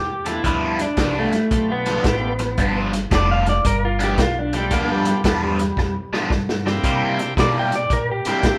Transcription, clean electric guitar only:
0.00 0.28 G4 loud
0.28 0.45 E4 medium
0.46 0.80 E4 medium
0.82 1.16 D4 medium
1.19 1.69 A3 medium
1.72 2.74 B3 medium
3.15 3.31 D5 medium
3.31 3.48 F5 medium
3.49 3.65 D5 medium
3.66 3.83 A#4 medium
3.85 4.01 F4 medium
4.03 4.19 G4 medium
4.22 4.39 F4 medium
4.39 4.55 D4 medium
4.57 4.73 G3 medium
4.73 4.90 A#3 medium
4.92 5.94 G3 loud
7.40 7.56 D5 medium
7.59 7.75 G5 medium
7.76 7.92 D5 medium
7.93 8.09 A#4 medium
8.11 8.27 G4 medium
8.29 8.45 G4 medium
8.46 8.58 G4 medium

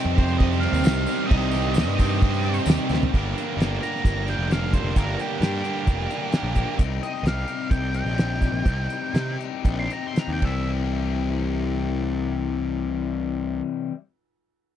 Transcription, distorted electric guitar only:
0.00 0.84 C3 medium
0.00 0.39 D#3 medium
0.00 0.18 G3 medium
0.00 0.16 C4 medium
0.00 0.15 G4 medium
0.15 0.85 G3 medium
0.15 0.85 C4 medium
0.15 0.87 G4 medium
0.84 1.29 C3 medium
0.84 1.30 D#3 medium
0.84 1.11 G3 loud
0.84 1.08 C4 loud
0.84 1.08 G4 loud
1.09 1.31 G3 medium
1.09 1.31 C4 medium
1.09 1.32 G4 medium
1.30 1.76 C3 medium
1.30 1.73 D#3 loud
1.30 1.53 G3 loud
1.30 1.51 C4 loud
1.30 1.51 G4 loud
1.52 1.73 G3 medium
1.52 1.74 C4 medium
1.52 1.76 G4 medium
1.74 2.20 D#3 medium
1.74 1.99 G3 medium
1.74 1.98 C4 medium
1.74 1.97 G4 medium
1.98 2.67 G3 medium
1.98 2.68 C4 medium
1.98 2.68 G4 medium
2.66 3.11 C3 medium
2.66 3.11 D#3 loud
2.66 2.91 G3 loud
2.66 2.89 C4 loud
2.66 2.87 G4 loud
2.88 3.11 G3 medium
2.88 3.11 C4 medium
2.88 3.10 G4 medium
3.11 3.56 G2 medium
3.11 3.56 D3 medium
3.11 3.36 G3 medium
3.11 3.36 A#3 medium
3.11 3.34 D4 medium
3.11 3.33 A#4 medium
3.34 3.58 G3 medium
3.34 3.58 A#3 medium
3.34 3.59 D4 medium
3.34 3.59 A#4 medium
3.57 4.28 G2 medium
3.57 4.03 D3 medium
3.57 3.84 G3 medium
3.57 3.83 A#3 medium
3.57 3.82 D4 medium
3.57 3.81 A#4 medium
3.81 4.03 G3 soft
3.81 4.03 A#3 medium
3.81 4.04 D4 medium
3.81 4.04 A#4 medium
4.03 4.28 G3 medium
4.03 4.27 A#3 medium
4.03 4.26 D4 medium
4.03 4.25 A#4 medium
4.27 4.73 G2 medium
4.27 4.73 D3 medium
4.27 4.48 G3 medium
4.27 4.49 A#3 medium
4.27 4.49 D4 medium
4.27 4.51 A#4 medium
4.49 4.75 G3 medium
4.49 4.73 A#3 medium
4.49 4.72 D4 medium
4.49 4.71 A#4 medium
4.72 4.95 G3 medium
4.72 4.96 A#3 medium
4.72 4.96 D4 medium
4.72 4.97 A#4 medium
4.95 5.39 G2 medium
4.95 5.39 D3 medium
4.95 5.19 G3 medium
4.95 5.18 A#3 medium
4.95 5.18 D4 medium
4.95 5.17 A#4 medium
5.18 5.40 G3 soft
5.18 5.41 A#3 soft
5.18 5.41 D4 medium
5.18 5.42 A#4 medium
5.40 5.86 G2 medium
5.40 5.86 D3 medium
5.40 5.66 G3 medium
5.40 5.65 A#3 medium
5.40 5.64 D4 medium
5.40 5.62 A#4 medium
5.64 5.86 G3 soft
5.64 5.87 A#3 medium
5.64 5.88 D4 medium
5.64 5.89 A#4 medium
5.87 6.11 G3 medium
5.87 6.10 A#3 medium
5.87 6.09 D4 medium
5.87 6.09 A#4 medium
6.10 6.56 G2 medium
6.10 6.57 D3 medium
6.10 6.31 G3 medium
6.10 6.33 A#3 medium
6.10 6.33 D4 medium
6.10 6.35 A#4 medium
6.33 6.56 G3 medium
6.33 6.56 A#3 medium
6.33 6.55 D4 medium
6.33 6.54 A#4 medium
6.55 6.78 G3 soft
6.55 6.77 A#3 medium
6.55 6.77 D4 medium
6.55 6.76 A#4 medium

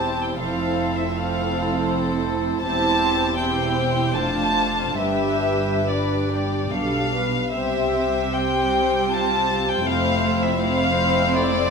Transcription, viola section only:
0.00 0.38 C4 soft
0.00 0.37 E4 soft
0.42 1.16 C4 soft
0.42 1.16 E4 soft
1.17 2.62 C4 soft
1.17 2.62 E4 soft
2.64 3.37 C4 soft
2.64 3.37 E4 soft
3.40 4.15 C4 soft
3.40 4.15 E4 soft
4.17 5.01 A3 soft
4.17 4.99 D4 soft
5.01 5.86 G3 soft
5.01 5.86 D4 soft
5.88 6.70 G3 soft
5.88 6.70 D4 soft
6.71 7.32 G3 soft
6.71 7.32 D4 soft
7.55 8.30 G3 soft
7.55 8.30 C4 soft
8.34 9.83 G3 soft
8.34 9.83 C4 soft
9.86 10.60 A3 medium
9.86 10.59 C4 medium
10.61 11.70 A3 medium
10.61 11.70 C4 medium

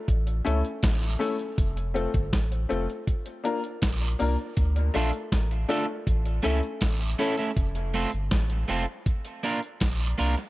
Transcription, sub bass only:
0.09 0.41 A1 loud
0.47 0.63 C#2 loud
0.84 1.16 A1 loud
1.59 2.08 F1 loud
2.15 2.31 G1 medium
2.33 2.66 A1 loud
2.71 2.87 F1 loud
3.83 4.15 A#1 medium
4.21 4.37 C2 medium
4.58 4.90 D2 medium
4.96 5.12 A#1 loud
5.33 5.65 A1 medium
6.07 6.40 A1 loud
6.45 6.61 C#2 loud
6.82 7.15 A1 medium
7.57 8.06 F1 loud
8.14 8.30 G1 medium
8.32 8.64 A1 loud
8.70 8.86 F1 loud
9.82 10.14 A#1 loud
10.20 10.36 C2 medium

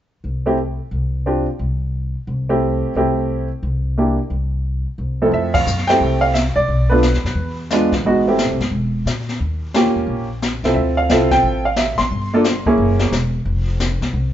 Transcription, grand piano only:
0.46 0.56 A3 medium
0.46 0.57 C4 soft
0.46 0.57 E4 soft
0.46 0.57 G4 medium
1.26 1.45 C4 soft
1.26 1.45 D4 soft
1.26 1.46 F4 soft
1.26 1.46 G4 soft
2.49 2.93 A3 medium
2.49 2.93 C4 soft
2.49 2.93 E4 soft
2.49 2.93 G4 medium
2.96 3.47 A3 soft
2.96 3.47 C4 soft
2.96 3.47 E4 soft
2.96 3.48 G4 medium
3.98 4.17 A#3 soft
3.98 4.17 D4 soft
3.98 4.17 E4 soft
3.98 4.17 G4 soft
5.22 5.65 F2 medium
5.22 5.65 A3 soft
5.22 5.65 C4 soft
5.22 5.65 E4 soft
5.22 5.65 A4 medium
5.34 5.54 E5 medium
5.54 5.86 F5 medium
5.87 6.33 A3 medium
5.87 6.33 C4 medium
5.87 6.33 E4 medium
5.87 6.33 G4 medium
5.87 6.20 G5 medium
6.21 6.35 F5 medium
6.34 6.39 E5 medium
6.56 6.88 D5 medium
6.90 7.02 A3 medium
6.90 7.02 B3 soft
6.90 7.02 D4 soft
6.90 7.02 F4 medium
6.90 7.54 B4 medium
7.72 7.91 G#3 medium
7.72 7.91 B3 soft
7.72 7.91 D4 medium
7.72 7.91 F4 medium
8.06 8.25 G#3 soft
8.06 8.25 B3 soft
8.06 8.25 D#4 soft
8.06 8.25 F#4 medium
8.27 8.56 A3 medium
8.27 8.57 C4 soft
8.27 8.57 E4 soft
8.27 8.57 G4 medium
9.76 10.26 A#3 medium
9.76 10.26 C#4 medium
9.76 10.26 F4 medium
9.76 10.26 G4 medium
10.65 11.08 C4 soft
10.65 11.08 E4 soft
10.65 11.08 F4 soft
10.65 11.08 A4 medium
10.74 10.79 E5 medium
10.97 11.29 F5 medium
11.11 11.61 C4 medium
11.11 11.61 E4 medium
11.11 11.62 F4 medium
11.11 11.62 A4 medium
11.32 11.63 G5 medium
11.65 11.78 F5 medium
11.77 11.99 E5 medium
11.98 12.96 C6 medium
12.34 12.44 A#3 medium
12.34 12.44 D4 medium
12.34 12.44 F4 medium
12.34 12.45 A4 medium
12.66 13.10 A#3 medium
12.66 13.10 C#4 medium
12.66 13.10 E4 medium
12.66 13.10 G#4 medium

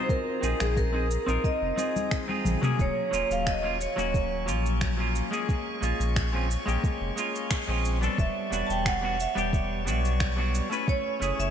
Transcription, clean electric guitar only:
0.00 0.38 C4 medium
0.00 0.39 D#4 medium
0.00 0.39 F4 medium
0.00 0.40 C5 medium
0.41 0.89 C4 medium
0.41 0.90 D#4 medium
0.41 0.90 F4 medium
0.41 0.91 G#4 medium
0.92 1.06 C4 medium
0.92 1.07 D#4 medium
0.92 1.08 G#4 loud
1.26 1.73 C4 medium
1.26 1.74 D#4 medium
1.26 1.74 F4 medium
1.26 1.75 A#4 medium
1.76 2.24 C4 medium
1.76 2.25 D#4 medium
1.76 2.25 F4 medium
1.76 2.26 G#4 medium
2.28 2.58 C4 medium
2.28 2.58 D#4 medium
2.28 2.59 F4 medium
2.28 2.59 G#4 medium
2.61 3.08 F#3 medium
2.61 3.09 A#3 medium
2.61 3.09 C#4 medium
2.61 3.09 G#4 loud
3.11 3.59 F#3 medium
3.11 3.59 A#3 medium
3.11 3.60 C#4 medium
3.11 3.60 F4 medium
3.62 3.76 F#3 medium
3.62 3.76 A#3 medium
3.62 3.77 C#4 medium
3.62 3.77 F4 loud
3.96 4.43 F#3 medium
3.96 4.43 A#3 medium
3.96 4.44 C#4 medium
3.96 4.44 F#4 loud
4.46 4.94 F#3 medium
4.46 4.94 A#3 medium
4.46 4.95 C#4 medium
4.46 4.95 F4 medium
4.97 5.27 F#3 medium
4.97 5.28 A#3 medium
4.97 5.28 C#4 medium
4.97 5.29 F4 medium
5.31 5.77 G#3 medium
5.31 5.78 A#3 medium
5.31 5.79 C#4 medium
5.31 5.79 G#4 loud
5.81 6.29 G#3 medium
5.81 6.29 A#3 medium
5.81 6.30 C#4 medium
5.81 6.30 F4 loud
6.32 6.46 G#3 medium
6.32 6.46 C4 medium
6.32 6.47 C#4 medium
6.32 6.47 F4 loud
6.66 7.12 G#3 medium
6.66 7.13 A#3 medium
6.66 7.13 C#4 medium
6.66 7.14 G4 loud
7.16 7.64 G#3 medium
7.16 7.64 A#3 medium
7.16 7.65 C#4 medium
7.16 7.65 F4 medium
7.67 7.97 G#3 medium
7.67 7.98 C4 medium
7.67 7.98 C#4 medium
7.67 7.99 F4 medium
8.01 8.47 G3 medium
8.01 8.48 B3 medium
8.01 8.48 D4 medium
8.01 8.49 A4 loud
8.50 8.98 G3 medium
8.50 8.99 B3 medium
8.50 8.99 D4 medium
8.50 9.00 F#4 medium
9.01 9.15 G3 medium
9.01 9.16 B3 medium
9.01 9.16 D4 medium
9.01 9.17 F#4 loud
9.35 9.82 G3 medium
9.35 9.83 B3 medium
9.35 9.83 D4 medium
9.35 9.84 G4 loud
9.85 10.33 G3 medium
9.85 10.34 B3 medium
9.85 10.34 D4 medium
9.85 10.35 F#4 medium
10.36 10.67 G3 medium
10.36 10.67 B3 medium
10.36 10.68 D4 medium
10.36 10.68 F#4 medium
10.70 11.17 A3 medium
10.70 11.17 C#4 medium
10.70 11.18 E4 medium
10.70 11.18 B4 loud
11.20 11.50 A3 medium
11.20 11.50 C#4 medium
11.20 11.50 E4 medium
11.20 11.50 G#4 medium

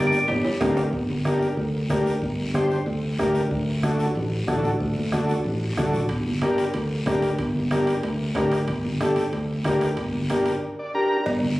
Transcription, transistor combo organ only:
0.00 0.19 D4 medium
0.00 0.19 G4 medium
0.00 0.19 A#4 medium
0.60 0.83 D4 medium
0.60 0.83 G4 medium
0.60 0.84 A#4 medium
1.25 1.48 D4 medium
1.25 1.48 G4 medium
1.25 1.48 A#4 medium
1.90 2.13 D4 medium
1.90 2.13 G4 medium
1.90 2.13 A#4 medium
2.54 2.77 D4 medium
2.54 2.77 G4 medium
2.54 2.77 C5 medium
3.19 3.42 D4 medium
3.19 3.42 G4 medium
3.19 3.42 A#4 medium
3.83 4.06 D4 medium
3.83 4.06 F#4 medium
3.83 4.07 A4 medium
4.47 4.70 D4 medium
4.47 4.71 F#4 medium
4.47 4.71 A4 medium
5.12 5.35 D4 medium
5.12 5.35 F#4 medium
5.12 5.36 A4 medium
5.77 6.00 D4 medium
5.77 6.00 F#4 medium
5.77 6.01 A4 medium
6.42 6.65 D4 medium
6.42 6.65 G4 medium
6.42 6.65 A#4 medium
7.07 7.30 D4 medium
7.07 7.30 G4 medium
7.07 7.30 A#4 medium
7.71 7.94 D4 medium
7.71 7.94 G4 medium
7.71 7.94 A#4 medium
8.36 8.59 D4 medium
8.36 8.59 G4 medium
8.36 8.59 A#4 medium
9.01 9.23 D4 medium
9.01 9.23 G4 medium
9.01 9.24 A4 medium
9.65 9.88 D4 medium
9.65 9.88 G4 medium
9.65 9.88 A#4 loud
10.30 10.52 D4 medium
10.30 10.53 G4 medium
10.30 10.53 A#4 medium
10.79 10.94 D5 medium
10.94 11.17 D4 medium
10.94 11.17 G4 medium
10.94 11.17 A#4 medium
10.94 11.25 A#5 medium

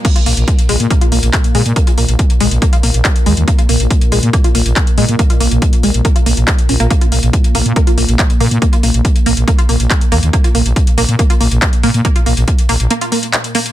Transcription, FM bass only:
0.26 0.33 A#1 medium
0.37 0.44 A#1 medium
0.69 0.76 A#1 loud
0.80 0.87 A#2 medium
1.12 1.19 A#1 medium
1.23 1.30 A#1 medium
1.55 1.62 A#2 medium
1.66 1.72 A#2 medium
1.98 2.05 A#1 medium
2.08 2.15 A#1 medium
2.40 2.47 A#1 medium
2.51 2.58 A#1 medium
2.83 2.90 A#1 medium
2.94 3.01 A#1 medium
3.26 3.33 D#2 medium
3.37 3.44 D#2 medium
3.69 3.76 A#1 loud
3.80 3.87 A#1 medium
4.12 4.19 A#1 medium
4.23 4.29 A#2 medium
4.55 4.62 A#1 loud
4.66 4.72 A#1 medium
4.98 5.05 A#2 medium
5.09 5.15 A#2 medium
5.41 5.47 A#1 medium
5.51 5.58 A#1 medium
5.83 5.90 A#1 medium
5.94 6.01 A#1 medium
6.26 6.33 A#1 loud
6.37 6.44 A#1 medium
6.69 6.76 A#1 loud
6.80 6.87 A#1 medium
7.12 7.19 A#1 medium
7.23 7.29 A#1 medium
7.55 7.62 A#1 medium
7.66 7.72 A#2 medium
7.98 8.05 A#1 medium
8.08 8.15 A#1 medium
8.40 8.47 A#2 medium
8.51 8.58 A#2 medium
8.83 8.90 A#1 medium
8.94 9.01 A#1 medium
9.26 9.33 A#1 loud
9.37 9.44 A#1 medium
9.69 9.76 A#1 loud
9.80 9.87 A#1 medium
10.12 10.19 D#2 medium
10.23 10.29 D#2 medium
10.55 10.62 A#1 medium
10.66 10.72 A#1 medium
10.98 11.05 A#1 loud
11.09 11.15 A#2 medium
11.41 11.47 A#1 medium
11.51 11.58 A#1 medium
11.83 11.90 A#2 medium
11.94 12.01 A#2 medium
12.26 12.33 A#1 medium
12.37 12.44 A#1 medium
12.69 12.76 A#1 loud
12.80 12.87 A#1 medium

